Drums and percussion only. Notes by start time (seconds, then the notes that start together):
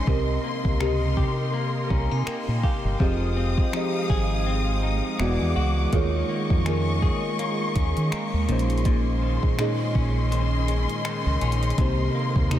0.07 kick
0.65 kick
0.80 finger snap
1.17 kick
1.90 kick
2.27 finger snap
2.63 kick
3.00 kick
3.58 kick
3.73 finger snap
4.10 kick
5.20 finger snap
5.93 kick, closed hi-hat
6.50 kick
6.66 finger snap, closed hi-hat
7.02 kick
7.39 closed hi-hat
7.76 kick, closed hi-hat
7.97 closed hi-hat
8.12 finger snap, closed hi-hat
8.49 closed hi-hat
8.59 closed hi-hat
8.70 closed hi-hat
8.78 closed hi-hat
8.85 kick, closed hi-hat
9.43 kick
9.59 finger snap, closed hi-hat
9.95 kick
10.32 closed hi-hat
10.68 closed hi-hat
10.89 closed hi-hat
11.05 finger snap, closed hi-hat
11.41 closed hi-hat
11.52 closed hi-hat
11.63 closed hi-hat
11.70 closed hi-hat
11.78 kick, closed hi-hat
12.36 kick
12.51 finger snap, closed hi-hat